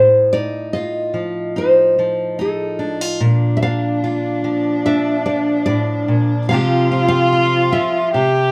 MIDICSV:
0, 0, Header, 1, 4, 480
1, 0, Start_track
1, 0, Key_signature, -1, "major"
1, 0, Tempo, 825309
1, 1861, Time_signature, 4, 2, 24, 8
1, 4953, End_track
2, 0, Start_track
2, 0, Title_t, "Nylon-string guitar"
2, 0, Program_c, 0, 24
2, 0, Note_on_c, 0, 72, 67
2, 187, Note_off_c, 0, 72, 0
2, 190, Note_on_c, 0, 74, 73
2, 423, Note_off_c, 0, 74, 0
2, 425, Note_on_c, 0, 75, 66
2, 917, Note_off_c, 0, 75, 0
2, 919, Note_on_c, 0, 72, 67
2, 1400, Note_off_c, 0, 72, 0
2, 1402, Note_on_c, 0, 69, 56
2, 1728, Note_off_c, 0, 69, 0
2, 2075, Note_on_c, 0, 76, 63
2, 2106, Note_off_c, 0, 76, 0
2, 2109, Note_on_c, 0, 77, 83
2, 2561, Note_off_c, 0, 77, 0
2, 2825, Note_on_c, 0, 76, 75
2, 3046, Note_off_c, 0, 76, 0
2, 3057, Note_on_c, 0, 74, 65
2, 3283, Note_off_c, 0, 74, 0
2, 3290, Note_on_c, 0, 74, 78
2, 3771, Note_off_c, 0, 74, 0
2, 3774, Note_on_c, 0, 77, 88
2, 4113, Note_off_c, 0, 77, 0
2, 4120, Note_on_c, 0, 77, 83
2, 4490, Note_off_c, 0, 77, 0
2, 4493, Note_on_c, 0, 76, 69
2, 4953, Note_off_c, 0, 76, 0
2, 4953, End_track
3, 0, Start_track
3, 0, Title_t, "Cello"
3, 0, Program_c, 1, 42
3, 1869, Note_on_c, 1, 62, 78
3, 3781, Note_on_c, 1, 65, 93
3, 3790, Note_off_c, 1, 62, 0
3, 4733, Note_off_c, 1, 65, 0
3, 4736, Note_on_c, 1, 67, 79
3, 4953, Note_off_c, 1, 67, 0
3, 4953, End_track
4, 0, Start_track
4, 0, Title_t, "Steel-string acoustic guitar"
4, 0, Program_c, 2, 25
4, 0, Note_on_c, 2, 45, 56
4, 0, Note_on_c, 2, 65, 47
4, 196, Note_on_c, 2, 63, 44
4, 213, Note_off_c, 2, 65, 0
4, 434, Note_on_c, 2, 65, 46
4, 661, Note_on_c, 2, 53, 48
4, 901, Note_off_c, 2, 63, 0
4, 908, Note_on_c, 2, 63, 44
4, 1153, Note_off_c, 2, 53, 0
4, 1155, Note_on_c, 2, 53, 46
4, 1382, Note_off_c, 2, 63, 0
4, 1389, Note_on_c, 2, 63, 52
4, 1620, Note_off_c, 2, 65, 0
4, 1623, Note_on_c, 2, 62, 46
4, 1751, Note_off_c, 2, 62, 0
4, 1751, Note_on_c, 2, 65, 43
4, 1836, Note_off_c, 2, 63, 0
4, 1839, Note_off_c, 2, 45, 0
4, 1863, Note_on_c, 2, 46, 63
4, 1866, Note_off_c, 2, 65, 0
4, 2108, Note_on_c, 2, 62, 43
4, 2348, Note_on_c, 2, 65, 46
4, 2576, Note_off_c, 2, 53, 0
4, 2583, Note_on_c, 2, 53, 50
4, 2819, Note_off_c, 2, 62, 0
4, 2826, Note_on_c, 2, 62, 49
4, 3054, Note_off_c, 2, 53, 0
4, 3061, Note_on_c, 2, 53, 51
4, 3293, Note_off_c, 2, 46, 0
4, 3296, Note_on_c, 2, 45, 56
4, 3535, Note_off_c, 2, 45, 0
4, 3538, Note_on_c, 2, 46, 49
4, 3754, Note_off_c, 2, 62, 0
4, 3755, Note_off_c, 2, 65, 0
4, 3778, Note_off_c, 2, 53, 0
4, 3779, Note_off_c, 2, 46, 0
4, 3783, Note_on_c, 2, 48, 67
4, 3786, Note_on_c, 2, 53, 55
4, 3794, Note_on_c, 2, 60, 52
4, 3797, Note_on_c, 2, 65, 53
4, 3800, Note_on_c, 2, 67, 57
4, 4015, Note_off_c, 2, 60, 0
4, 4022, Note_on_c, 2, 60, 48
4, 4253, Note_off_c, 2, 65, 0
4, 4260, Note_on_c, 2, 65, 49
4, 4496, Note_off_c, 2, 53, 0
4, 4501, Note_off_c, 2, 48, 0
4, 4503, Note_on_c, 2, 53, 54
4, 4711, Note_off_c, 2, 65, 0
4, 4712, Note_off_c, 2, 60, 0
4, 4736, Note_on_c, 2, 48, 63
4, 4741, Note_off_c, 2, 53, 0
4, 4953, Note_off_c, 2, 48, 0
4, 4953, Note_off_c, 2, 67, 0
4, 4953, End_track
0, 0, End_of_file